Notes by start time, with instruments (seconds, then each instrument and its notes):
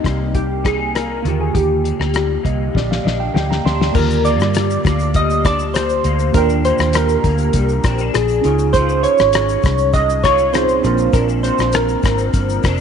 Already playing: clean electric guitar C3 G3 G4, tine electric piano A#3 D#4 D5 G5, synth keys D#4
0.04 fingered electric bass C2, clean electric guitar A#3, kick, cross-stick, closed hi-hat
0.34 synth keys G4, kick, closed hi-hat
0.64 clean electric guitar D#4, synth keys G#4, kick, cross-stick, closed hi-hat
0.95 clean electric guitar A#3, synth keys A#4, cross-stick, closed hi-hat
1.23 fingered electric bass D#2, tine electric piano D3 A#3, clean electric guitar D#3, closed hi-hat
1.27 tine electric piano F4 G4
1.41 synth keys G#4
1.54 fingered electric bass D#2, clean electric guitar D#3, synth keys G4, kick, closed hi-hat
1.84 clean electric guitar G#3, closed hi-hat
1.99 fingered electric bass D2, clean electric guitar A#3, cross-stick
2.14 clean electric guitar G3, cross-stick, closed hi-hat
2.43 fingered electric bass C2, clean electric guitar A#3, tine electric piano D#5, kick, closed hi-hat
2.74 fingered electric bass A#1, clean electric guitar G3, tine electric piano D5, kick, snare
2.91 tine electric piano F5, snare
3.04 fingered electric bass A#1, clean electric guitar D4, tine electric piano D#5, snare
3.20 tine electric piano G5
3.34 fingered electric bass D2, clean electric guitar A#3, synth keys G4, tine electric piano G5, snare
3.51 tine electric piano A#5, snare
3.64 fingered electric bass D2, clean electric guitar D4, tine electric piano C6, snare
3.81 snare
3.93 fingered electric bass D#2, tine electric piano D3 A#3 F4, synth keys A#4, kick, crash, shaker
3.98 tine electric piano G4
4.10 shaker
4.24 clean electric guitar A#3, synth keys D5, closed hi-hat, shaker
4.40 fingered electric bass G2, cross-stick, shaker
4.54 clean electric guitar G3, cross-stick, closed hi-hat, shaker
4.70 shaker
4.84 fingered electric bass D2, clean electric guitar A#3, kick, closed hi-hat, shaker
4.86 cross-stick, shaker
4.99 shaker
5.14 clean electric guitar G3, synth keys D#5, kick, closed hi-hat, shaker
5.30 shaker
5.44 clean electric guitar D4, synth keys D5, kick, cross-stick, closed hi-hat, shaker
5.59 shaker
5.74 clean electric guitar G3, synth keys C5, cross-stick, closed hi-hat, shaker
5.89 shaker
6.04 fingered electric bass D2, clean electric guitar A#3, closed hi-hat, shaker
6.19 shaker
6.32 fingered electric bass D#2, tine electric piano A#3 D4 F4, clean electric guitar D4, synth keys A#4, kick, closed hi-hat, shaker
6.38 tine electric piano G5
6.49 shaker
6.65 clean electric guitar A#3, synth keys C5, closed hi-hat, shaker
6.78 fingered electric bass D#2, cross-stick, shaker
6.81 shaker
6.93 clean electric guitar G3, synth keys A#4, cross-stick, closed hi-hat, shaker
7.09 shaker
7.11 shaker
7.24 fingered electric bass D2, clean electric guitar A#3, kick, closed hi-hat, shaker
7.38 shaker
7.40 shaker
7.53 fingered electric bass C2, clean electric guitar G3, kick, closed hi-hat, shaker
7.69 shaker
7.71 shaker
7.84 fingered electric bass A#1, clean electric guitar C4, kick, cross-stick, closed hi-hat, shaker
7.98 clean electric guitar D4, shaker
8.14 fingered electric bass A#1, synth keys G#4, cross-stick, closed hi-hat, shaker
8.28 shaker
8.30 shaker
8.41 fingered electric bass C#2, tine electric piano C#4 D#4 F4, closed hi-hat, shaker
8.45 clean electric guitar C#3, tine electric piano G#4
8.59 shaker
8.73 clean electric guitar C#3 F4, synth keys C5, kick, closed hi-hat, shaker
8.89 shaker
9.03 synth keys C#5, closed hi-hat, shaker
9.18 fingered electric bass G#1, cross-stick, shaker
9.33 clean electric guitar G#3, cross-stick, closed hi-hat, shaker
9.49 shaker
9.62 fingered electric bass C2, kick, closed hi-hat, shaker
9.65 cross-stick, shaker
9.78 shaker
9.93 clean electric guitar G#3, synth keys D#5, kick, closed hi-hat, shaker
10.10 shaker
10.23 clean electric guitar F4, synth keys C#5, kick, cross-stick, closed hi-hat, shaker
10.38 shaker
10.53 clean electric guitar G#3, tine electric piano C4 D#4 F4 G#4, synth keys C5, cross-stick, closed hi-hat, shaker
10.69 shaker
10.81 fingered electric bass A#1, clean electric guitar A#2, tine electric piano C4 D4 F4, closed hi-hat, shaker
10.86 tine electric piano A#4
10.98 shaker
10.99 shaker
11.13 fingered electric bass A#1, clean electric guitar A#2 D4, synth keys A#4, kick, closed hi-hat, shaker
11.29 shaker
11.43 clean electric guitar C4, synth keys C5, closed hi-hat, shaker
11.58 fingered electric bass A#1, cross-stick, shaker
11.72 clean electric guitar F3, synth keys A#4, cross-stick, closed hi-hat, shaker
11.89 shaker
12.02 fingered electric bass G#1, clean electric guitar C4, kick, closed hi-hat, shaker
12.04 cross-stick, shaker
12.18 shaker
12.33 fingered electric bass G1, clean electric guitar F3, kick, closed hi-hat, shaker
12.49 shaker
12.63 fingered electric bass F1, clean electric guitar D4, kick, cross-stick, closed hi-hat, shaker
12.77 shaker